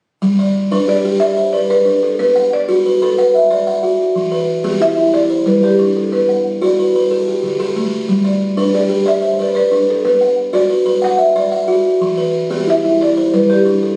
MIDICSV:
0, 0, Header, 1, 3, 480
1, 0, Start_track
1, 0, Key_signature, 1, "major"
1, 0, Tempo, 327690
1, 324, Time_signature, 12, 3, 24, 8
1, 20453, End_track
2, 0, Start_track
2, 0, Title_t, "Kalimba"
2, 0, Program_c, 0, 108
2, 322, Note_on_c, 0, 55, 69
2, 572, Note_on_c, 0, 74, 59
2, 804, Note_off_c, 0, 55, 0
2, 1046, Note_on_c, 0, 71, 65
2, 1053, Note_on_c, 0, 62, 77
2, 1285, Note_on_c, 0, 67, 55
2, 1289, Note_off_c, 0, 74, 0
2, 1516, Note_off_c, 0, 67, 0
2, 1530, Note_off_c, 0, 62, 0
2, 1534, Note_on_c, 0, 67, 68
2, 1767, Note_off_c, 0, 71, 0
2, 1775, Note_on_c, 0, 74, 65
2, 2002, Note_on_c, 0, 72, 59
2, 2011, Note_off_c, 0, 67, 0
2, 2252, Note_on_c, 0, 71, 67
2, 2472, Note_off_c, 0, 74, 0
2, 2490, Note_on_c, 0, 74, 67
2, 2719, Note_on_c, 0, 62, 71
2, 2726, Note_off_c, 0, 72, 0
2, 2731, Note_off_c, 0, 71, 0
2, 3204, Note_off_c, 0, 62, 0
2, 3210, Note_off_c, 0, 74, 0
2, 3210, Note_on_c, 0, 59, 69
2, 3449, Note_on_c, 0, 78, 61
2, 3690, Note_off_c, 0, 59, 0
2, 3933, Note_on_c, 0, 66, 77
2, 4170, Note_off_c, 0, 78, 0
2, 4189, Note_on_c, 0, 71, 61
2, 4404, Note_off_c, 0, 71, 0
2, 4412, Note_off_c, 0, 66, 0
2, 4421, Note_on_c, 0, 71, 73
2, 4663, Note_on_c, 0, 78, 60
2, 4896, Note_off_c, 0, 71, 0
2, 4901, Note_on_c, 0, 76, 57
2, 5133, Note_on_c, 0, 74, 75
2, 5359, Note_off_c, 0, 78, 0
2, 5377, Note_on_c, 0, 78, 65
2, 5607, Note_on_c, 0, 66, 64
2, 5612, Note_off_c, 0, 74, 0
2, 5616, Note_off_c, 0, 76, 0
2, 6084, Note_on_c, 0, 52, 68
2, 6089, Note_off_c, 0, 66, 0
2, 6094, Note_off_c, 0, 78, 0
2, 6323, Note_on_c, 0, 71, 60
2, 6567, Note_off_c, 0, 52, 0
2, 6798, Note_on_c, 0, 67, 66
2, 6799, Note_on_c, 0, 59, 81
2, 7040, Note_on_c, 0, 64, 55
2, 7046, Note_off_c, 0, 71, 0
2, 7268, Note_off_c, 0, 64, 0
2, 7285, Note_off_c, 0, 59, 0
2, 7285, Note_on_c, 0, 64, 69
2, 7519, Note_on_c, 0, 74, 66
2, 7524, Note_off_c, 0, 67, 0
2, 7528, Note_off_c, 0, 64, 0
2, 7758, Note_on_c, 0, 72, 61
2, 7997, Note_on_c, 0, 55, 77
2, 8232, Note_off_c, 0, 74, 0
2, 8249, Note_on_c, 0, 74, 65
2, 8483, Note_off_c, 0, 55, 0
2, 8483, Note_on_c, 0, 62, 67
2, 8484, Note_off_c, 0, 72, 0
2, 8966, Note_off_c, 0, 62, 0
2, 8966, Note_on_c, 0, 59, 69
2, 8969, Note_off_c, 0, 74, 0
2, 9213, Note_on_c, 0, 78, 54
2, 9447, Note_off_c, 0, 59, 0
2, 9690, Note_on_c, 0, 66, 80
2, 9698, Note_on_c, 0, 74, 64
2, 9930, Note_off_c, 0, 78, 0
2, 9947, Note_on_c, 0, 71, 54
2, 10169, Note_off_c, 0, 66, 0
2, 10172, Note_off_c, 0, 71, 0
2, 10189, Note_on_c, 0, 71, 69
2, 10411, Note_on_c, 0, 69, 59
2, 10412, Note_off_c, 0, 74, 0
2, 10418, Note_off_c, 0, 71, 0
2, 10662, Note_on_c, 0, 67, 53
2, 10886, Note_on_c, 0, 50, 71
2, 11108, Note_off_c, 0, 69, 0
2, 11125, Note_on_c, 0, 69, 68
2, 11366, Note_off_c, 0, 50, 0
2, 11367, Note_on_c, 0, 57, 67
2, 11374, Note_off_c, 0, 67, 0
2, 11845, Note_on_c, 0, 55, 68
2, 11846, Note_off_c, 0, 69, 0
2, 11847, Note_off_c, 0, 57, 0
2, 12076, Note_on_c, 0, 74, 54
2, 12325, Note_off_c, 0, 55, 0
2, 12556, Note_on_c, 0, 62, 75
2, 12558, Note_on_c, 0, 71, 64
2, 12800, Note_off_c, 0, 74, 0
2, 12803, Note_on_c, 0, 67, 58
2, 13010, Note_off_c, 0, 67, 0
2, 13028, Note_on_c, 0, 67, 69
2, 13040, Note_off_c, 0, 62, 0
2, 13268, Note_on_c, 0, 74, 64
2, 13281, Note_off_c, 0, 71, 0
2, 13506, Note_on_c, 0, 72, 59
2, 13516, Note_off_c, 0, 67, 0
2, 13757, Note_on_c, 0, 71, 72
2, 13969, Note_off_c, 0, 74, 0
2, 13987, Note_on_c, 0, 74, 65
2, 14230, Note_on_c, 0, 62, 71
2, 14235, Note_off_c, 0, 72, 0
2, 14240, Note_off_c, 0, 71, 0
2, 14715, Note_off_c, 0, 74, 0
2, 14717, Note_off_c, 0, 62, 0
2, 14722, Note_on_c, 0, 59, 69
2, 14956, Note_on_c, 0, 78, 54
2, 15202, Note_off_c, 0, 59, 0
2, 15425, Note_on_c, 0, 74, 66
2, 15426, Note_on_c, 0, 66, 74
2, 15666, Note_on_c, 0, 71, 55
2, 15680, Note_off_c, 0, 78, 0
2, 15887, Note_off_c, 0, 71, 0
2, 15904, Note_on_c, 0, 71, 76
2, 15914, Note_off_c, 0, 66, 0
2, 16139, Note_on_c, 0, 78, 64
2, 16154, Note_off_c, 0, 74, 0
2, 16381, Note_on_c, 0, 76, 56
2, 16393, Note_off_c, 0, 71, 0
2, 16636, Note_on_c, 0, 74, 76
2, 16855, Note_off_c, 0, 78, 0
2, 16873, Note_on_c, 0, 78, 66
2, 17105, Note_on_c, 0, 66, 71
2, 17112, Note_off_c, 0, 76, 0
2, 17119, Note_off_c, 0, 74, 0
2, 17593, Note_off_c, 0, 66, 0
2, 17593, Note_on_c, 0, 52, 72
2, 17598, Note_off_c, 0, 78, 0
2, 17833, Note_on_c, 0, 71, 58
2, 18078, Note_off_c, 0, 52, 0
2, 18314, Note_on_c, 0, 67, 63
2, 18317, Note_on_c, 0, 59, 77
2, 18557, Note_off_c, 0, 71, 0
2, 18560, Note_on_c, 0, 64, 58
2, 18800, Note_off_c, 0, 59, 0
2, 18800, Note_off_c, 0, 64, 0
2, 18818, Note_on_c, 0, 64, 77
2, 19038, Note_off_c, 0, 67, 0
2, 19050, Note_off_c, 0, 64, 0
2, 19055, Note_on_c, 0, 74, 64
2, 19292, Note_on_c, 0, 72, 61
2, 19534, Note_on_c, 0, 55, 74
2, 19750, Note_off_c, 0, 74, 0
2, 19767, Note_on_c, 0, 74, 65
2, 20000, Note_on_c, 0, 62, 71
2, 20007, Note_off_c, 0, 72, 0
2, 20008, Note_off_c, 0, 55, 0
2, 20453, Note_off_c, 0, 62, 0
2, 20453, Note_off_c, 0, 74, 0
2, 20453, End_track
3, 0, Start_track
3, 0, Title_t, "Marimba"
3, 0, Program_c, 1, 12
3, 1302, Note_on_c, 1, 74, 89
3, 1757, Note_on_c, 1, 76, 88
3, 1789, Note_off_c, 1, 74, 0
3, 2236, Note_on_c, 1, 74, 78
3, 2257, Note_off_c, 1, 76, 0
3, 2490, Note_off_c, 1, 74, 0
3, 2498, Note_on_c, 1, 71, 85
3, 2974, Note_on_c, 1, 69, 68
3, 2988, Note_off_c, 1, 71, 0
3, 3212, Note_on_c, 1, 71, 83
3, 3219, Note_off_c, 1, 69, 0
3, 3705, Note_off_c, 1, 71, 0
3, 3711, Note_on_c, 1, 74, 83
3, 4437, Note_on_c, 1, 69, 72
3, 4442, Note_off_c, 1, 74, 0
3, 4666, Note_on_c, 1, 71, 76
3, 4670, Note_off_c, 1, 69, 0
3, 5800, Note_off_c, 1, 71, 0
3, 7056, Note_on_c, 1, 76, 95
3, 7525, Note_on_c, 1, 74, 90
3, 7547, Note_off_c, 1, 76, 0
3, 8020, Note_on_c, 1, 71, 77
3, 8022, Note_off_c, 1, 74, 0
3, 8238, Note_off_c, 1, 71, 0
3, 8254, Note_on_c, 1, 67, 82
3, 8743, Note_on_c, 1, 69, 73
3, 8746, Note_off_c, 1, 67, 0
3, 8980, Note_on_c, 1, 71, 75
3, 8983, Note_off_c, 1, 69, 0
3, 9875, Note_off_c, 1, 71, 0
3, 12812, Note_on_c, 1, 74, 77
3, 13299, Note_on_c, 1, 76, 81
3, 13303, Note_off_c, 1, 74, 0
3, 13786, Note_off_c, 1, 76, 0
3, 13792, Note_on_c, 1, 74, 70
3, 14010, Note_on_c, 1, 71, 81
3, 14025, Note_off_c, 1, 74, 0
3, 14453, Note_off_c, 1, 71, 0
3, 14507, Note_on_c, 1, 69, 71
3, 14718, Note_on_c, 1, 71, 85
3, 14742, Note_off_c, 1, 69, 0
3, 15389, Note_off_c, 1, 71, 0
3, 15450, Note_on_c, 1, 74, 87
3, 15893, Note_off_c, 1, 74, 0
3, 16173, Note_on_c, 1, 78, 93
3, 17309, Note_off_c, 1, 78, 0
3, 18603, Note_on_c, 1, 76, 89
3, 19076, Note_off_c, 1, 76, 0
3, 19076, Note_on_c, 1, 74, 90
3, 19538, Note_on_c, 1, 71, 80
3, 19553, Note_off_c, 1, 74, 0
3, 19643, Note_off_c, 1, 71, 0
3, 19770, Note_on_c, 1, 67, 83
3, 20259, Note_on_c, 1, 69, 73
3, 20260, Note_off_c, 1, 67, 0
3, 20363, Note_off_c, 1, 69, 0
3, 20453, End_track
0, 0, End_of_file